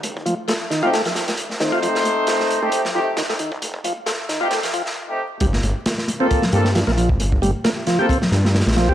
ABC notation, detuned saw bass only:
X:1
M:4/4
L:1/16
Q:"Swing 16ths" 1/4=134
K:Gm
V:1 name="Detuned saw bass" clef=bass
F,,,2 F,,, z8 z2 F,, z C,, | z2 F,,, z8 z2 F,, z C,, | F,,,2 F,,, z12 z | G,,,2 G,,, z6 z G,,3 B,,,2 G,,, |
G,,,2 G,,, z6 z G,,3 B,,,2 G,,, |]